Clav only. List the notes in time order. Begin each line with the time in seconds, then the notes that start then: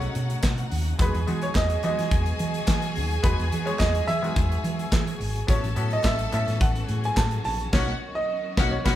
Already playing: A3 C#4 D#4 G#4
0.99 G#3 B3 D#4 F#4
1.27 G#3 B3 D#4 F#4
1.83 G3 B3 D#4 F#4
1.90 G#3
3.23 G#3 B3 D#4 F#4
3.66 G#3 B3 D#4 G#4
4.22 D#3 G#3 B3 F#4
5.47 B3 C#4 E4 F#4
5.76 B3 C#4 E4 F#4
6.32 B3 C#4 E4 A4
7.73 A#3 C#4 D#4 F#4
8.58 A#3 C#4 D#4 F#4
8.85 A#3 C#4 D#4 F#4